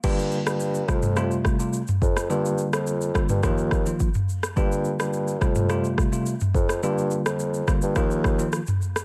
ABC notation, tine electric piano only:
X:1
M:4/4
L:1/16
Q:1/4=106
K:Gm
V:1 name="Tine electric piano" clef=bass
[D,G,B,F]6 [C,G,A,F]2 [C,G,A,F]3 [C,G,A,F] z4 | [D,G,B,F]6 [D,G,B,F]2 [E,F,B,F]3 [E,F,B,F] z4 | [D,G,B,F]6 [C,G,A,F]2 [C,G,A,F]3 [C,G,A,F] z4 | [D,G,B,F]6 [D,G,B,F]2 [E,F,B,F]3 [E,F,B,F] z4 |]